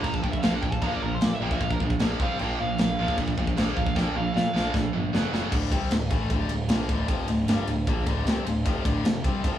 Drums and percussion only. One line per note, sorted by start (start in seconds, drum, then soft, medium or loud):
0.04 kick medium
0.04 china medium
0.14 kick medium
0.24 kick medium
0.33 kick medium
0.43 snare loud
0.43 china medium
0.63 kick medium
0.72 kick medium
0.82 kick loud
0.82 china medium
1.21 snare loud
1.21 china medium
1.51 kick medium
1.60 kick loud
1.60 china medium
1.71 kick medium
1.80 kick medium
1.90 kick medium
1.99 snare loud
1.99 china medium
2.20 kick loud
2.39 china medium
2.78 snare loud
2.78 china medium
3.08 kick medium
3.18 kick loud
3.18 china medium
3.28 kick medium
3.38 kick medium
3.47 kick medium
3.57 snare loud
3.57 china medium
3.77 kick medium
3.86 kick medium
3.96 kick loud
3.96 snare medium
4.37 snare medium
4.56 snare medium
4.74 kick loud
4.74 snare medium
5.15 snare loud
5.34 snare medium
5.52 kick loud
5.52 crash loud
5.72 kick loud
5.72 ride medium
5.91 snare loud
5.91 ride loud
6.10 kick loud
6.10 ride medium
6.30 kick medium
6.30 ride medium
6.49 ride medium
6.69 snare loud
6.69 ride loud
6.89 kick loud
6.89 ride medium
7.08 kick loud
7.08 ride loud
7.28 ride medium
7.48 snare loud
7.48 ride loud
7.68 ride medium
7.87 kick loud
7.87 ride loud
8.06 kick loud
8.06 ride medium
8.27 snare loud
8.27 ride loud
8.47 ride medium
8.66 kick loud
8.66 ride loud
8.85 kick loud
8.85 ride medium
9.05 snare loud
9.05 ride loud
9.24 kick loud
9.24 ride medium
9.44 kick medium
9.44 ride loud